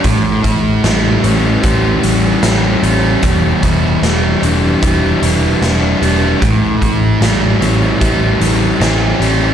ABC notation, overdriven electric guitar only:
X:1
M:4/4
L:1/8
Q:1/4=75
K:Amix
V:1 name="Overdriven electric guitar" clef=bass
A,, E G, E, G, E, C G, | E,, E G, E, G, E, D G, | A,, E G, E, G, E, C G, |]